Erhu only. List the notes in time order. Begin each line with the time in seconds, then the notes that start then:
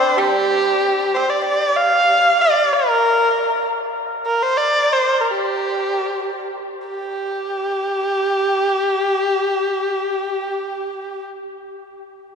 Already playing: C5
0.17 G4
1.14 C5
1.30 D5
1.44 D5
1.76 F5
2.41 D5
2.73 A#4
4.26 A#4
4.43 C5
4.57 D5
4.93 C5
5.21 A#4
5.31 G4
6.88 G4